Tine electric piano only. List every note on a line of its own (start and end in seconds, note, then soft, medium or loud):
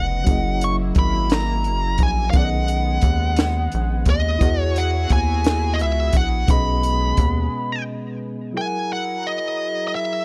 0.00 0.22 C#3 medium
0.00 0.24 F3 medium
0.00 0.23 C#4 medium
0.00 0.25 B4 medium
0.00 0.26 D#5 medium
0.24 2.29 F#3 medium
0.24 2.29 C#4 medium
0.24 2.30 E4 medium
0.28 2.31 A#3 medium
0.28 2.31 G#4 medium
0.28 2.32 D#5 medium
2.31 4.36 D#3 medium
2.31 4.37 B3 medium
2.31 4.37 C#4 medium
2.36 4.38 G#4 medium
2.36 2.43 D5 medium
2.45 4.42 D#5 medium
4.39 6.44 B3 medium
4.39 6.43 E4 medium
4.39 6.44 F#4 medium
4.44 6.45 G#4 medium
4.44 6.46 F#5 medium
6.46 8.50 B2 medium
6.46 8.51 B3 medium
6.46 8.51 C#4 medium
6.51 8.52 G#4 medium
6.51 8.53 D#5 medium
8.53 10.25 F#3 soft
8.53 10.25 E4 soft
8.53 10.25 G#4 soft
8.58 10.25 A#4 medium
8.58 8.64 E5 soft
8.66 10.25 F#5 medium